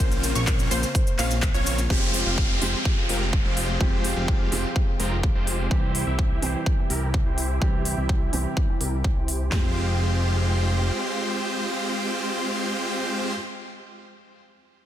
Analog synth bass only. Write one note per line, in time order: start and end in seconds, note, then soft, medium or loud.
0.00 0.33 A#1 loud
0.35 0.69 A#1 loud
0.71 0.84 A#1 loud
1.19 1.52 A#1 loud
1.54 1.88 A#1 loud
1.90 2.23 F1 medium
2.26 2.59 F1 loud
2.62 2.75 F1 medium
3.09 3.43 F1 loud
3.45 3.78 F1 loud
3.81 4.14 F1 medium
4.16 4.50 F1 loud
4.52 4.65 F1 medium
5.00 5.33 F1 loud
5.35 5.69 F1 loud
5.71 6.04 C2 loud
6.07 6.40 C2 medium
6.42 6.56 C2 loud
6.90 7.23 C2 loud
7.26 7.59 C2 medium
7.62 7.95 C2 loud
7.97 8.31 C2 medium
8.33 8.46 C2 medium
8.81 9.14 C2 medium
9.16 9.50 C2 loud
9.52 10.91 F1 loud